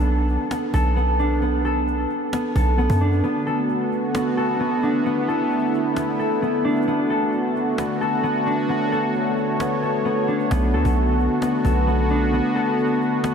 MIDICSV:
0, 0, Header, 1, 5, 480
1, 0, Start_track
1, 0, Key_signature, 2, "minor"
1, 0, Tempo, 454545
1, 1498, Time_signature, 4, 2, 24, 8
1, 14091, End_track
2, 0, Start_track
2, 0, Title_t, "Analog synth pad"
2, 0, Program_c, 0, 89
2, 3419, Note_on_c, 0, 50, 81
2, 3419, Note_on_c, 0, 57, 75
2, 3420, Note_on_c, 0, 59, 74
2, 3420, Note_on_c, 0, 66, 86
2, 5320, Note_off_c, 0, 66, 0
2, 5341, Note_on_c, 0, 64, 92
2, 7240, Note_off_c, 0, 64, 0
2, 7261, Note_on_c, 0, 66, 90
2, 9137, Note_off_c, 0, 59, 0
2, 9179, Note_on_c, 0, 73, 74
2, 11062, Note_off_c, 0, 66, 0
2, 11080, Note_off_c, 0, 73, 0
2, 11101, Note_on_c, 0, 59, 74
2, 11101, Note_on_c, 0, 66, 91
2, 14091, Note_off_c, 0, 50, 0
2, 14091, Note_off_c, 0, 57, 0
2, 14091, Note_off_c, 0, 59, 0
2, 14091, Note_off_c, 0, 66, 0
2, 14091, End_track
3, 0, Start_track
3, 0, Title_t, "Harp"
3, 0, Program_c, 1, 46
3, 0, Note_on_c, 1, 59, 88
3, 0, Note_on_c, 1, 62, 85
3, 0, Note_on_c, 1, 69, 78
3, 535, Note_off_c, 1, 59, 0
3, 539, Note_on_c, 1, 59, 73
3, 775, Note_off_c, 1, 69, 0
3, 779, Note_on_c, 1, 69, 86
3, 1010, Note_off_c, 1, 59, 0
3, 1014, Note_on_c, 1, 59, 85
3, 1256, Note_off_c, 1, 62, 0
3, 1260, Note_on_c, 1, 62, 73
3, 1493, Note_off_c, 1, 59, 0
3, 1497, Note_on_c, 1, 59, 83
3, 1736, Note_off_c, 1, 69, 0
3, 1741, Note_on_c, 1, 69, 82
3, 2456, Note_off_c, 1, 59, 0
3, 2461, Note_on_c, 1, 59, 77
3, 2696, Note_off_c, 1, 69, 0
3, 2700, Note_on_c, 1, 69, 77
3, 2931, Note_off_c, 1, 59, 0
3, 2936, Note_on_c, 1, 59, 92
3, 3173, Note_off_c, 1, 62, 0
3, 3178, Note_on_c, 1, 62, 77
3, 3414, Note_off_c, 1, 59, 0
3, 3418, Note_on_c, 1, 59, 88
3, 3656, Note_off_c, 1, 69, 0
3, 3660, Note_on_c, 1, 69, 78
3, 4376, Note_off_c, 1, 59, 0
3, 4380, Note_on_c, 1, 59, 74
3, 4614, Note_off_c, 1, 69, 0
3, 4618, Note_on_c, 1, 69, 78
3, 4852, Note_off_c, 1, 59, 0
3, 4856, Note_on_c, 1, 59, 86
3, 5097, Note_off_c, 1, 62, 0
3, 5101, Note_on_c, 1, 62, 72
3, 5337, Note_off_c, 1, 59, 0
3, 5341, Note_on_c, 1, 59, 84
3, 5575, Note_off_c, 1, 69, 0
3, 5579, Note_on_c, 1, 69, 78
3, 6291, Note_off_c, 1, 59, 0
3, 6295, Note_on_c, 1, 59, 69
3, 6535, Note_off_c, 1, 69, 0
3, 6539, Note_on_c, 1, 69, 84
3, 6776, Note_off_c, 1, 59, 0
3, 6781, Note_on_c, 1, 59, 82
3, 7013, Note_off_c, 1, 62, 0
3, 7018, Note_on_c, 1, 62, 85
3, 7256, Note_off_c, 1, 59, 0
3, 7260, Note_on_c, 1, 59, 90
3, 7494, Note_off_c, 1, 69, 0
3, 7498, Note_on_c, 1, 69, 80
3, 8217, Note_off_c, 1, 59, 0
3, 8221, Note_on_c, 1, 59, 74
3, 8456, Note_off_c, 1, 69, 0
3, 8460, Note_on_c, 1, 69, 84
3, 8690, Note_off_c, 1, 59, 0
3, 8694, Note_on_c, 1, 59, 88
3, 8935, Note_off_c, 1, 62, 0
3, 8939, Note_on_c, 1, 62, 76
3, 9172, Note_off_c, 1, 59, 0
3, 9177, Note_on_c, 1, 59, 84
3, 9415, Note_off_c, 1, 69, 0
3, 9419, Note_on_c, 1, 69, 85
3, 10135, Note_off_c, 1, 59, 0
3, 10140, Note_on_c, 1, 59, 77
3, 10375, Note_off_c, 1, 69, 0
3, 10379, Note_on_c, 1, 69, 77
3, 10608, Note_off_c, 1, 59, 0
3, 10613, Note_on_c, 1, 59, 95
3, 10851, Note_off_c, 1, 62, 0
3, 10855, Note_on_c, 1, 62, 74
3, 11094, Note_off_c, 1, 59, 0
3, 11098, Note_on_c, 1, 59, 86
3, 11335, Note_off_c, 1, 69, 0
3, 11340, Note_on_c, 1, 69, 77
3, 12056, Note_off_c, 1, 59, 0
3, 12060, Note_on_c, 1, 59, 75
3, 12292, Note_off_c, 1, 69, 0
3, 12296, Note_on_c, 1, 69, 74
3, 12532, Note_off_c, 1, 59, 0
3, 12536, Note_on_c, 1, 59, 83
3, 12776, Note_off_c, 1, 62, 0
3, 12781, Note_on_c, 1, 62, 72
3, 13016, Note_off_c, 1, 59, 0
3, 13020, Note_on_c, 1, 59, 82
3, 13253, Note_off_c, 1, 69, 0
3, 13258, Note_on_c, 1, 69, 79
3, 13972, Note_off_c, 1, 59, 0
3, 13976, Note_on_c, 1, 59, 69
3, 14091, Note_off_c, 1, 59, 0
3, 14091, Note_off_c, 1, 62, 0
3, 14091, Note_off_c, 1, 69, 0
3, 14091, End_track
4, 0, Start_track
4, 0, Title_t, "808-style bass"
4, 0, Program_c, 2, 38
4, 0, Note_on_c, 2, 35, 98
4, 399, Note_off_c, 2, 35, 0
4, 778, Note_on_c, 2, 35, 103
4, 2176, Note_off_c, 2, 35, 0
4, 2700, Note_on_c, 2, 35, 105
4, 3045, Note_off_c, 2, 35, 0
4, 3059, Note_on_c, 2, 42, 100
4, 3404, Note_off_c, 2, 42, 0
4, 11099, Note_on_c, 2, 35, 107
4, 11340, Note_on_c, 2, 38, 101
4, 11356, Note_off_c, 2, 35, 0
4, 11453, Note_off_c, 2, 38, 0
4, 11458, Note_on_c, 2, 35, 101
4, 11919, Note_off_c, 2, 35, 0
4, 12299, Note_on_c, 2, 35, 103
4, 13105, Note_off_c, 2, 35, 0
4, 14091, End_track
5, 0, Start_track
5, 0, Title_t, "Cajon"
5, 59, Note_on_c, 9, 38, 38
5, 164, Note_off_c, 9, 38, 0
5, 302, Note_on_c, 9, 38, 46
5, 408, Note_off_c, 9, 38, 0
5, 539, Note_on_c, 9, 38, 114
5, 644, Note_off_c, 9, 38, 0
5, 779, Note_on_c, 9, 36, 86
5, 885, Note_off_c, 9, 36, 0
5, 1023, Note_on_c, 9, 38, 46
5, 1129, Note_off_c, 9, 38, 0
5, 1257, Note_on_c, 9, 38, 41
5, 1362, Note_off_c, 9, 38, 0
5, 1500, Note_on_c, 9, 38, 48
5, 1605, Note_off_c, 9, 38, 0
5, 1742, Note_on_c, 9, 38, 39
5, 1847, Note_off_c, 9, 38, 0
5, 1980, Note_on_c, 9, 38, 39
5, 2086, Note_off_c, 9, 38, 0
5, 2224, Note_on_c, 9, 38, 44
5, 2329, Note_off_c, 9, 38, 0
5, 2460, Note_on_c, 9, 38, 115
5, 2566, Note_off_c, 9, 38, 0
5, 2700, Note_on_c, 9, 36, 92
5, 2806, Note_off_c, 9, 36, 0
5, 2944, Note_on_c, 9, 38, 49
5, 3050, Note_off_c, 9, 38, 0
5, 3059, Note_on_c, 9, 36, 89
5, 3165, Note_off_c, 9, 36, 0
5, 3180, Note_on_c, 9, 38, 35
5, 3286, Note_off_c, 9, 38, 0
5, 3300, Note_on_c, 9, 38, 37
5, 3405, Note_off_c, 9, 38, 0
5, 3419, Note_on_c, 9, 38, 48
5, 3525, Note_off_c, 9, 38, 0
5, 3661, Note_on_c, 9, 38, 39
5, 3766, Note_off_c, 9, 38, 0
5, 3900, Note_on_c, 9, 38, 39
5, 4005, Note_off_c, 9, 38, 0
5, 4143, Note_on_c, 9, 38, 45
5, 4249, Note_off_c, 9, 38, 0
5, 4379, Note_on_c, 9, 38, 113
5, 4485, Note_off_c, 9, 38, 0
5, 4620, Note_on_c, 9, 38, 41
5, 4726, Note_off_c, 9, 38, 0
5, 4863, Note_on_c, 9, 38, 46
5, 4969, Note_off_c, 9, 38, 0
5, 5096, Note_on_c, 9, 38, 43
5, 5202, Note_off_c, 9, 38, 0
5, 5338, Note_on_c, 9, 38, 45
5, 5444, Note_off_c, 9, 38, 0
5, 5581, Note_on_c, 9, 38, 38
5, 5686, Note_off_c, 9, 38, 0
5, 5819, Note_on_c, 9, 38, 41
5, 5899, Note_off_c, 9, 38, 0
5, 5899, Note_on_c, 9, 38, 32
5, 5978, Note_off_c, 9, 38, 0
5, 5978, Note_on_c, 9, 38, 23
5, 6062, Note_off_c, 9, 38, 0
5, 6062, Note_on_c, 9, 38, 46
5, 6168, Note_off_c, 9, 38, 0
5, 6298, Note_on_c, 9, 38, 110
5, 6404, Note_off_c, 9, 38, 0
5, 6540, Note_on_c, 9, 38, 42
5, 6646, Note_off_c, 9, 38, 0
5, 6783, Note_on_c, 9, 38, 50
5, 6889, Note_off_c, 9, 38, 0
5, 7019, Note_on_c, 9, 38, 25
5, 7079, Note_off_c, 9, 38, 0
5, 7079, Note_on_c, 9, 38, 33
5, 7139, Note_off_c, 9, 38, 0
5, 7139, Note_on_c, 9, 38, 39
5, 7199, Note_off_c, 9, 38, 0
5, 7199, Note_on_c, 9, 38, 46
5, 7258, Note_off_c, 9, 38, 0
5, 7258, Note_on_c, 9, 38, 47
5, 7364, Note_off_c, 9, 38, 0
5, 7500, Note_on_c, 9, 38, 38
5, 7606, Note_off_c, 9, 38, 0
5, 7739, Note_on_c, 9, 38, 41
5, 7844, Note_off_c, 9, 38, 0
5, 7983, Note_on_c, 9, 38, 45
5, 8088, Note_off_c, 9, 38, 0
5, 8219, Note_on_c, 9, 38, 110
5, 8324, Note_off_c, 9, 38, 0
5, 8461, Note_on_c, 9, 38, 42
5, 8566, Note_off_c, 9, 38, 0
5, 8703, Note_on_c, 9, 38, 46
5, 8809, Note_off_c, 9, 38, 0
5, 8936, Note_on_c, 9, 38, 43
5, 9041, Note_off_c, 9, 38, 0
5, 9179, Note_on_c, 9, 38, 45
5, 9284, Note_off_c, 9, 38, 0
5, 9421, Note_on_c, 9, 38, 39
5, 9526, Note_off_c, 9, 38, 0
5, 9659, Note_on_c, 9, 38, 39
5, 9764, Note_off_c, 9, 38, 0
5, 9902, Note_on_c, 9, 38, 46
5, 10008, Note_off_c, 9, 38, 0
5, 10139, Note_on_c, 9, 38, 112
5, 10244, Note_off_c, 9, 38, 0
5, 10380, Note_on_c, 9, 38, 44
5, 10486, Note_off_c, 9, 38, 0
5, 10623, Note_on_c, 9, 38, 50
5, 10729, Note_off_c, 9, 38, 0
5, 10858, Note_on_c, 9, 38, 37
5, 10964, Note_off_c, 9, 38, 0
5, 10979, Note_on_c, 9, 38, 37
5, 11085, Note_off_c, 9, 38, 0
5, 11099, Note_on_c, 9, 36, 124
5, 11205, Note_off_c, 9, 36, 0
5, 11341, Note_on_c, 9, 38, 41
5, 11447, Note_off_c, 9, 38, 0
5, 11459, Note_on_c, 9, 36, 98
5, 11565, Note_off_c, 9, 36, 0
5, 11579, Note_on_c, 9, 38, 40
5, 11685, Note_off_c, 9, 38, 0
5, 11823, Note_on_c, 9, 38, 45
5, 11929, Note_off_c, 9, 38, 0
5, 12059, Note_on_c, 9, 38, 111
5, 12165, Note_off_c, 9, 38, 0
5, 12299, Note_on_c, 9, 36, 90
5, 12405, Note_off_c, 9, 36, 0
5, 12543, Note_on_c, 9, 38, 46
5, 12648, Note_off_c, 9, 38, 0
5, 12776, Note_on_c, 9, 38, 42
5, 12882, Note_off_c, 9, 38, 0
5, 13019, Note_on_c, 9, 38, 46
5, 13125, Note_off_c, 9, 38, 0
5, 13261, Note_on_c, 9, 38, 39
5, 13367, Note_off_c, 9, 38, 0
5, 13500, Note_on_c, 9, 38, 41
5, 13580, Note_off_c, 9, 38, 0
5, 13580, Note_on_c, 9, 38, 32
5, 13661, Note_off_c, 9, 38, 0
5, 13661, Note_on_c, 9, 38, 24
5, 13744, Note_off_c, 9, 38, 0
5, 13744, Note_on_c, 9, 38, 45
5, 13850, Note_off_c, 9, 38, 0
5, 13980, Note_on_c, 9, 38, 116
5, 14086, Note_off_c, 9, 38, 0
5, 14091, End_track
0, 0, End_of_file